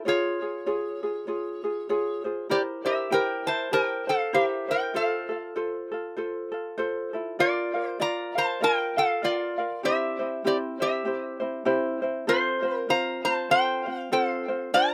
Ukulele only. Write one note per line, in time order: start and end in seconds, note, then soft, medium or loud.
0.05 0.41 F4 medium
0.05 0.41 G#4 medium
0.05 0.41 C#5 medium
0.42 0.65 F4 soft
0.42 0.66 G#4 soft
0.66 1.02 F4 medium
0.66 1.02 G#4 medium
0.66 1.02 C#5 medium
1.03 1.27 F4 soft
1.03 1.27 G#4 soft
1.27 1.63 F4 medium
1.27 1.63 G#4 medium
1.27 1.63 C#5 medium
1.64 1.88 F4 soft
1.64 1.89 G#4 medium
1.89 2.25 F4 medium
1.89 2.24 G#4 loud
1.89 2.25 C#5 medium
2.24 2.50 F4 soft
2.24 2.49 G#4 soft
2.24 2.50 C5 medium
2.49 2.86 E4 medium
2.49 2.85 G4 medium
2.49 2.85 A#4 medium
2.49 2.83 C5 medium
2.85 3.10 E4 soft
2.85 3.11 A#4 medium
2.85 3.11 C5 medium
3.11 3.47 E4 medium
3.11 3.47 G4 medium
3.11 3.46 A#4 medium
3.11 3.45 C5 medium
3.46 3.71 E4 soft
3.46 3.72 A#4 soft
3.46 3.72 C5 soft
3.71 4.08 E4 medium
3.71 4.07 G4 medium
3.71 4.08 A#4 medium
3.71 4.06 C5 medium
4.07 4.33 C5 medium
4.33 4.69 E4 medium
4.33 4.69 G4 medium
4.33 4.68 A#4 medium
4.33 4.67 C5 medium
4.68 4.95 E4 soft
4.68 4.94 A#4 soft
4.68 4.93 C5 medium
4.94 5.30 F4 medium
4.94 5.28 A4 medium
4.94 5.30 C5 medium
5.29 5.55 F4 soft
5.29 5.55 A4 medium
5.56 5.91 F4 medium
5.56 5.90 A4 medium
5.56 5.91 C5 medium
5.92 6.16 F4 soft
5.92 6.17 A4 medium
6.17 6.53 F4 medium
6.17 6.50 A4 medium
6.17 6.52 C5 medium
6.52 6.77 F4 soft
6.52 6.78 A4 medium
6.78 7.14 F4 medium
6.78 7.12 A4 medium
6.78 7.13 C5 medium
7.13 7.39 E4 soft
7.13 7.38 F4 soft
7.13 7.39 A4 medium
7.39 7.75 F4 medium
7.39 7.74 A#4 medium
7.39 7.75 D5 medium
7.39 7.73 F5 medium
7.74 7.99 F4 soft
7.74 7.99 A#4 soft
7.74 8.00 F5 soft
8.00 8.36 F4 medium
8.00 8.35 A#4 medium
8.00 8.35 D5 medium
8.00 8.34 F5 medium
8.35 8.60 F4 soft
8.35 8.61 A#4 soft
8.35 8.61 F5 soft
8.60 8.97 F4 medium
8.60 8.97 A#4 medium
8.60 8.96 D5 medium
8.60 8.96 F5 medium
8.97 9.22 F4 soft
8.97 9.23 F5 medium
9.23 9.59 F4 medium
9.23 9.58 A#4 medium
9.23 9.58 D5 medium
9.23 9.57 F5 medium
9.58 9.84 F4 soft
9.58 9.84 A#4 soft
9.58 9.83 F5 soft
9.83 10.19 C4 medium
9.83 10.19 E4 medium
9.83 10.19 G4 medium
9.83 10.18 C5 medium
10.19 10.44 C4 soft
10.19 10.44 E4 soft
10.19 10.45 C5 medium
10.45 10.80 C4 medium
10.45 10.80 E4 medium
10.45 10.80 G4 medium
10.45 10.79 C5 medium
10.80 11.04 C4 soft
10.80 11.05 E4 soft
10.80 11.06 C5 medium
11.05 11.41 C4 medium
11.05 11.40 E4 medium
11.05 11.41 G4 medium
11.05 11.39 C5 medium
11.40 11.64 C4 soft
11.40 11.65 E4 soft
11.40 11.65 C5 medium
11.65 12.02 C4 medium
11.65 12.02 E4 loud
11.65 12.02 G4 medium
11.65 12.01 C5 medium
12.02 12.26 C4 soft
12.02 12.28 E4 medium
12.02 12.27 C5 medium
12.27 12.63 C4 medium
12.27 12.62 F4 medium
12.27 12.63 A4 medium
12.27 12.61 C5 medium
12.63 12.88 C4 soft
12.63 12.88 F4 soft
12.63 12.89 C5 medium
12.89 13.25 C4 medium
12.89 13.25 F4 medium
12.89 13.23 C5 medium
13.25 13.50 C4 soft
13.25 13.50 F4 soft
13.25 13.50 C5 medium
13.50 13.86 C4 medium
13.50 13.86 F4 medium
13.50 13.86 A4 medium
13.50 13.85 C5 medium
13.86 14.11 C4 soft
13.86 14.11 F4 medium
13.86 14.12 C5 medium
14.12 14.47 C4 medium
14.12 14.48 F4 medium
14.12 14.47 A4 medium
14.12 14.47 C5 medium
14.48 14.74 C4 soft
14.48 14.74 F4 soft
14.48 14.73 C5 medium
14.74 14.94 D4 medium
14.74 14.94 F4 medium
14.74 14.94 A#4 medium
14.74 14.94 C5 medium